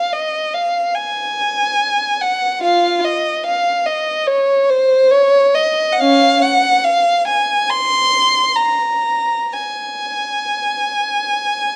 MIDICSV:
0, 0, Header, 1, 2, 480
1, 0, Start_track
1, 0, Tempo, 848656
1, 1027, Tempo, 827586
1, 1502, Time_signature, 4, 2, 24, 8
1, 2947, Tempo, 855920
1, 4867, Tempo, 974026
1, 5347, Tempo, 1030928
1, 6388, End_track
2, 0, Start_track
2, 0, Title_t, "Violin"
2, 0, Program_c, 0, 40
2, 0, Note_on_c, 0, 77, 52
2, 65, Note_off_c, 0, 77, 0
2, 72, Note_on_c, 0, 75, 47
2, 306, Note_on_c, 0, 77, 48
2, 310, Note_off_c, 0, 75, 0
2, 539, Note_on_c, 0, 80, 59
2, 547, Note_off_c, 0, 77, 0
2, 1259, Note_on_c, 0, 78, 57
2, 1261, Note_off_c, 0, 80, 0
2, 1493, Note_on_c, 0, 65, 48
2, 1495, Note_on_c, 0, 77, 57
2, 1499, Note_off_c, 0, 78, 0
2, 1718, Note_off_c, 0, 65, 0
2, 1731, Note_off_c, 0, 77, 0
2, 1737, Note_on_c, 0, 75, 57
2, 1976, Note_off_c, 0, 75, 0
2, 1980, Note_on_c, 0, 77, 60
2, 2212, Note_on_c, 0, 75, 57
2, 2214, Note_off_c, 0, 77, 0
2, 2449, Note_on_c, 0, 73, 62
2, 2458, Note_off_c, 0, 75, 0
2, 2697, Note_off_c, 0, 73, 0
2, 2700, Note_on_c, 0, 72, 66
2, 2937, Note_on_c, 0, 73, 75
2, 2947, Note_off_c, 0, 72, 0
2, 3182, Note_on_c, 0, 75, 64
2, 3184, Note_off_c, 0, 73, 0
2, 3389, Note_off_c, 0, 75, 0
2, 3396, Note_on_c, 0, 78, 54
2, 3433, Note_off_c, 0, 78, 0
2, 3437, Note_on_c, 0, 61, 56
2, 3437, Note_on_c, 0, 77, 74
2, 3658, Note_off_c, 0, 61, 0
2, 3672, Note_on_c, 0, 78, 68
2, 3674, Note_off_c, 0, 77, 0
2, 3908, Note_off_c, 0, 78, 0
2, 3908, Note_on_c, 0, 77, 64
2, 4143, Note_off_c, 0, 77, 0
2, 4148, Note_on_c, 0, 80, 66
2, 4377, Note_off_c, 0, 80, 0
2, 4391, Note_on_c, 0, 84, 84
2, 4872, Note_off_c, 0, 84, 0
2, 4872, Note_on_c, 0, 82, 65
2, 5350, Note_off_c, 0, 82, 0
2, 5350, Note_on_c, 0, 80, 56
2, 6388, Note_off_c, 0, 80, 0
2, 6388, End_track
0, 0, End_of_file